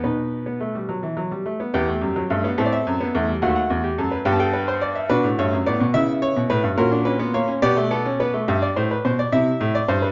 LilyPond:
<<
  \new Staff \with { instrumentName = "Grand piano" } { \time 6/8 \key b \phrygian \tempo 4. = 71 << { r2. | g''4. e''32 d''32 e''4~ e''16 | fis''32 e''32 fis''4~ fis''16 g''32 a''32 g''4~ g''16 | b'8 cis''8 d''8 e''8 cis''8 b'8 |
ais'8 b'8 cis''8 d''4. | \key g \major e''16 d''16 c''16 b'16 c''16 d''16 e''8. d''16 c''16 b'16 | } \\ { b'2~ b'8 r8 | g'4. a'4. | fis'8. g'16 a'16 b'16 g'16 a'16 b'16 c''16 d''16 e''16 | fis'4. e'4. |
fis'4. g'8 a'8 b'8 | g'4. e'4. | } >> }
  \new Staff \with { instrumentName = "Grand piano" } { \clef bass \time 6/8 \key b \phrygian << { dis'8. b16 a16 g16 fis16 e16 fis16 g16 a16 b16 | b16 a16 g16 fis16 a16 b16 c'8. b16 a16 g16 | a4. b4. | d'8 a8 b2 |
cis'16 d'16 cis'16 b16 ais16 cis'16 b16 a16 b16 cis'16 b16 a16 | \key g \major r2. | } \\ { b,2~ b,8 r8 | e,8 fis,8 g,8 a,8 fis,8 e,8 | dis,8 e,8 fis,8 g,4. | b,16 a,16 g,16 fis,16 a,16 b,16 cis8. b,16 a,16 g,16 |
ais,4. b,4. | g,8 a,8 b,8 c8 a,8 g,8 | } >> }
>>